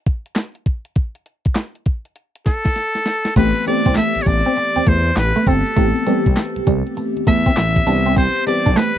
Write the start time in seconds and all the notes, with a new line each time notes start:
0.06 kick, closed hi-hat
0.26 closed hi-hat
0.36 snare, clap, closed hi-hat
0.55 closed hi-hat
0.66 kick, closed hi-hat
0.85 closed hi-hat
0.96 kick, closed hi-hat
1.15 closed hi-hat
1.26 closed hi-hat
1.45 kick, closed hi-hat
1.55 snare, clap, closed hi-hat
1.75 closed hi-hat
1.86 kick, closed hi-hat
2.05 closed hi-hat
2.16 closed hi-hat
2.36 closed hi-hat
2.46 A4, kick, snare, closed hi-hat
2.65 kick, snare, closed hi-hat
2.76 snare, closed hi-hat
2.95 snare, closed hi-hat
3.06 snare, closed hi-hat
3.25 snare, closed hi-hat
3.36 A1 E3 A3 B3 C4 G4 B4, kick, closed hi-hat, crash, tambourine
3.55 closed hi-hat
3.66 E3 A3 B3 C4 G4 D5, muted clean electric guitar stroke, closed hi-hat, tambourine
3.85 C2 C4, kick, closed hi-hat
3.95 A3 E5, snare, clap, closed hi-hat, tambourine
4.15 A1, closed hi-hat
4.22 C#5, closed hi-hat, tambourine
4.26 A1 D5, muted clean electric guitar stroke, kick
4.46 C4, closed hi-hat
4.56 muted clean electric guitar stroke, closed hi-hat, tambourine
4.76 E2 C4, closed hi-hat
4.87 E2 A3 C5, kick, closed hi-hat
5.06 closed hi-hat
5.16 A1 B4, muted clean electric guitar stroke, snare, clap, closed hi-hat, tambourine
5.36 A3, closed hi-hat
5.47 G1 C4 A4, kick, closed hi-hat, tambourine
5.66 closed hi-hat
5.76 A1 E3 A3 B3 C4 G4, kick, closed hi-hat, tambourine
5.96 closed hi-hat
6.07 E3 G3 A3 B3 C4 G4, closed hi-hat, tambourine
6.26 C2, muted clean electric guitar stroke, kick, closed hi-hat
6.36 snare, clap, closed hi-hat, tambourine
6.56 C2, closed hi-hat
6.67 C2 G3, kick, closed hi-hat, tambourine
6.87 closed hi-hat
6.97 muted clean electric guitar stroke, closed hi-hat, tambourine
7.16 E2, closed hi-hat
7.27 E2 A3 E5, kick, closed hi-hat
7.46 C4, kick, closed hi-hat
7.57 A1, muted clean electric guitar stroke, snare, clap, closed hi-hat, tambourine
7.76 kick, closed hi-hat
7.87 C2 E3 G3 B3 C4 D4 G4, closed hi-hat, tambourine
8.06 C4, closed hi-hat
8.16 C4 C5, kick, closed hi-hat, tambourine
8.36 closed hi-hat
8.47 E3 G3 B3 C4 G4 D5, muted clean electric guitar stroke, closed hi-hat, tambourine
8.66 B1 D4, kick, closed hi-hat
8.76 A3 B4, snare, clap, closed hi-hat, tambourine